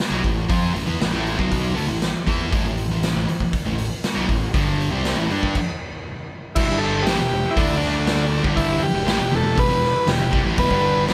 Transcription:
0.00 snare, open hi-hat
0.10 B1 B2 F#3
0.24 A1 A2 E3, kick, open hi-hat
0.49 F2 F3 C4 F4, kick, open hi-hat
0.75 A1 A2 E3, open hi-hat
0.86 E2 E3 B3
1.01 A1 A2 E3, snare, open hi-hat
1.13 A1 A2 E3 A3
1.27 open hi-hat
1.38 B1 B2 F#3 B3, kick
1.52 kick, open hi-hat
1.75 D2 D3 A3, open hi-hat
1.88 A1 A2 E3
2.02 snare, open hi-hat
2.26 E2 E3 B3 E4, kick, open hi-hat
2.52 A1 A2 E3, kick, open hi-hat
2.66 A1 A2 E3
2.78 open hi-hat
2.90 A1 A2 E3
3.03 snare, open hi-hat
3.16 A1 A2 E3
3.28 muted distorted electric guitar stroke, muted picked electric bass stroke, open hi-hat
3.40 muted picked electric bass stroke, muted distorted electric guitar stroke, kick
3.53 kick, open hi-hat
3.65 A1 A2 E3
3.78 open hi-hat
4.04 snare, open hi-hat
4.15 B1 B2 F#3
4.28 A1 A2 E3, kick, open hi-hat
4.54 G1 G2 D3 G3, kick, open hi-hat
4.80 open hi-hat
4.91 C2 C3 G3 C4
5.05 snare, open hi-hat
5.17 A1 A2 E3
5.30 G2 G3 D4 G4, open hi-hat
5.43 kick
5.55 kick, crash
6.54 E1 E2 B2 E4 G4 B4 E5, kick, crash
6.68 G1 G2 D3 G3
6.78 A4
7.02 A1 A2 G4
7.06 E3, snare, open hi-hat
7.18 E1 E2 B2, snare
7.51 E4
7.56 D2 D3 A3 D4 A4 D5, kick, open hi-hat
7.78 D4
7.83 snare
8.07 snare, open hi-hat
8.43 G1 G2 D3 G3 E4 G4 B4, kick
8.56 E4, kick, open hi-hat
8.81 G4, muted picked electric bass stroke, muted distorted electric guitar stroke
8.94 E1 E2 B2
9.06 A1 A2 E3, snare, open hi-hat
9.19 E1 E2 B2
9.31 E1 E2 B2
9.36 A4
9.43 E1 E2 B2
9.55 E1 E2 B2 B4, kick, open hi-hat
9.69 E1 E2 B2
9.83 snare
10.07 E1 E2 B2 G4, snare, open hi-hat
10.19 E1 E2 B2
10.31 C2 C3 G3, kick
10.44 A1 A2 E3
10.57 E1 E2 B2 B4, kick, open hi-hat
10.69 G1 G2 D3 G3, kick
11.08 A1 A2 E3, snare, open hi-hat

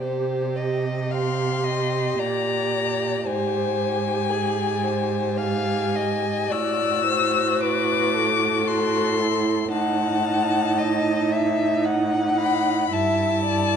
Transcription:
0.02 C3 G4 C5
0.56 D#5
1.11 G4 F5 C6
1.64 D#5
2.18 A#2 D5 A#5
3.27 G#2 G4 C5 G#5
4.30 G#4
4.83 C5
5.37 G4 F5 G#5
5.95 D#5
6.50 A2 F#4 D5 E6
7.07 C5
7.60 B4 D6
8.14 A4
8.66 F#4 C6
9.19 E4
9.71 A2 D#4 F#5 A5
10.78 D#5
11.32 E5
11.85 F#5
12.38 B5
12.91 G2 E4 E5 A5
13.47 D5

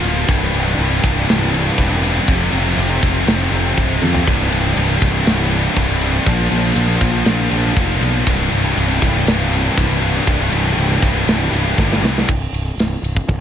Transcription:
0.03 D1 A#2 F3, ride
0.13 A#2 F3
0.20 A#2 F3
0.27 C1 C2 G2, kick, ride
0.35 C2 G2
0.42 C2 G2
0.49 C1 C2 G2
0.54 C2, ride
0.59 G2
0.66 C2 G2
0.73 C2 G2
0.78 C1 C2, ride
0.83 G2
0.88 C2 G2
0.96 C2 G2
1.04 C1 C2 G2, kick, ride
1.12 C2 G2
1.19 C2 G2
1.26 C1 C2 G2, snare, ride
1.34 C2 G2
1.42 C2 G2
1.51 C2 G2, ride
1.57 C2 G2
1.65 C2 G2
1.72 C2 G2
1.78 E1 C2 G2, kick, ride
1.88 C2 G2
1.97 C2 G2
2.04 C2 G2, ride
2.11 C2 G2
2.20 C2 G2
2.28 F1 F2 C3, kick, ride
2.35 F2 C3
2.44 F2 C3
2.51 F1 F2 C3, ride
2.58 F2 C3
2.67 F2 C3
2.73 F1 F2 C3
2.78 F2 C3, ride
2.90 F2 C3
2.98 F2 C3
3.03 F1 F2 C3, kick, ride
3.12 F2 C3
3.19 F2 C3
3.27 F1 F2 C3, snare, ride
3.35 F2 C3
3.43 F2 C3
3.50 F1 F2 C3, ride
3.58 F2 C3
3.66 F2 C3
3.74 F2 C3, ride
3.78 C1 F2 C3, kick
3.89 F2 C3
3.96 F2 C3
4.02 F2 C3, high tom
4.12 F2 C3, floor tom
4.20 F2 C3
4.27 C1 C2 G2, kick, crash
4.35 C2 G2
4.42 C2 G2
4.50 C1 C2 G2, ride
4.58 C2 G2
4.66 C2 G2
4.73 C1 C2 G2
4.77 C2, ride
4.81 G2
4.87 C2 G2
4.95 C2 G2
5.02 C1 C2 G2, kick, ride
5.11 C2 G2
5.20 C2 G2
5.26 C1 C2 G2, snare, ride
5.34 C2 G2
5.42 C2 G2
5.49 C2 G2, ride
5.58 C2 G2
5.66 C2 G2
5.73 C1 C2 G2, kick, ride
5.81 C2 G2
5.88 C2 G2
5.95 C2 G2
6.01 C2 G2, ride
6.11 C2 G2
6.19 C2 G2
6.26 A#1 A#2 F3, kick, ride
6.34 A#2 F3
6.42 A#2 F3
6.49 A#1 A#2 F3, ride
6.57 A#2 F3
6.64 A#2 F3
6.72 A#1 A#2 F3, ride
6.79 A#2 F3
6.88 A#2 F3
6.95 A#2 F3
7.01 A#1 A#2 F3, kick, ride
7.11 A#2 F3
7.18 A#2 F3
7.25 A#1 A#2 F3, snare, ride
7.34 A#2 F3
7.42 A#2 F3
7.49 A#1 A#2 F3, ride
7.58 A#2 F3
7.65 A#2 F3
7.71 A#2 F3
7.76 F1 F3, kick, ride
7.81 A#2
7.88 A#2 F3
7.95 A#2 F3
8.01 B1 A#2 F3, ride
8.11 A#2 F3
8.19 A#2 F3
8.26 C1 C2 G2, kick, ride
8.34 C2 G2
8.40 C2 G2
8.49 C1 C2 G2, ride
8.56 C2 G2
8.63 C2 G2
8.72 C2 G2
8.77 C1 C2 G2, ride
8.87 C2 G2
8.95 C2 G2
9.02 C1 C2 G2, kick, ride
9.10 C2 G2
9.18 C2 G2
9.25 C1 C2 G2, snare, ride
9.34 C2 G2
9.40 C2 G2
9.48 C2 G2
9.53 C2, ride
9.58 G2
9.64 C2 G2
9.71 C2 G2
9.78 C1 C2 G2, kick, ride
9.87 C2 G2
9.94 C2 G2
10.01 C2 G2, ride
10.09 C2 G2
10.17 C2 G2
10.26 C1 C2 G2, kick, ride
10.34 C2 G2
10.41 C2 G2
10.50 C1 C2 G2, ride
10.57 C2 G2
10.66 C2 G2
10.73 C1 C2 G2
10.77 C2 G2, ride
10.88 C2 G2
10.96 C2 G2
11.02 C1 C2 G2, kick, ride
11.12 C2 G2
11.19 C2 G2
11.26 C1 C2 G2, snare, ride
11.35 C2 G2
11.42 C2 G2
11.50 C1 C2 G2, ride
11.58 C2 G2
11.65 C2 G2
11.73 C2 G2
11.78 G1 C2 G2, kick, snare
11.89 C2 G2, snare
11.96 C2 G2
12.02 C2 G2, snare
12.12 C2 G2
12.18 C2 G2, snare
12.29 C1, kick, crash
12.53 C1, ride
12.78 C1, snare, ride
13.03 C1, ride
13.16 kick
13.28 C1, kick, high tom

